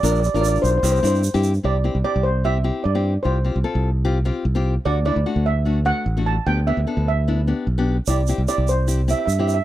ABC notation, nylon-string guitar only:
X:1
M:4/4
L:1/16
Q:"Swing 16ths" 1/4=149
K:C
V:1 name="Nylon-string guitar"
[DF_B]2 z [DFB]4 z [CEG]2 [CEG]2 z [CEG]2 z | [CEG] z [CEG] z [CEG]2 z2 [CEG] z [CEG]2 z [CEG]2 z | [CFG] z [CFG] z [CFA]2 z2 [CFG] z [CFG]2 z [CFG]2 z | [A,D^F] z [A,DE] z [A,DF]2 z2 [A,DF] z [A,DF]2 z [A,DF]2 z |
[B,DG] z [B,DG] z [B,DA]2 z2 [B,DE] z [B,DG]2 z [B,DG]2 z | [CEG] z [CEG] z [CEG]2 z2 [CEG] z [CEG]2 z [CEG]2 z |]